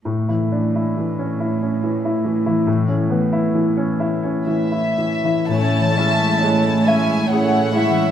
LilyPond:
<<
  \new Staff \with { instrumentName = "Violin section" } { \time 3/4 \key a \major \tempo 4 = 68 r2. | r2 e''4 | a''4. gis''8 fis''4 | }
  \new Staff \with { instrumentName = "Violin section" } { \time 3/4 \key a \major r2. | r2. | <cis' cis''>8 <e' e''>8 <cis' cis''>8 <e' e''>8 <cis' cis''>8 <e' e''>8 | }
  \new Staff \with { instrumentName = "Grand piano" } { \time 3/4 \key a \major a,16 e'16 d'16 e'16 e16 cis'16 e'16 cis'16 e16 e'16 e16 e'16 | a,16 cis'16 b16 e'16 e16 cis'16 e'16 cis'16 e16 e'16 e16 e'16 | a,8 cis'8 gis8 e''8 gis'8 e'8 | }
  \new Staff \with { instrumentName = "Harp" } { \time 3/4 \key a \major a,16 e16 cis'16 gis16 e''16 cis''16 e''16 cis''16 e''16 e'16 cis'16 e16 | a,16 cis'16 e8 e''16 cis''16 e''16 cis''16 e''8 cis'16 e16 | \tuplet 3/2 { a,8 e8 cis'8~ cis'8 e''8 cis''8 e''8 cis'8 e8 } | }
  \new Staff \with { instrumentName = "Viola section" } { \time 3/4 \key a \major r2. | r2. | <a e'>8 <gis cis'>8 <a e'>8 <gis cis'>8 <a e'>8 <gis cis'>8 | }
  \new Staff \with { instrumentName = "Cello section" } { \clef bass \time 3/4 \key a \major a,2.~ | a,2. | a,2. | }
>>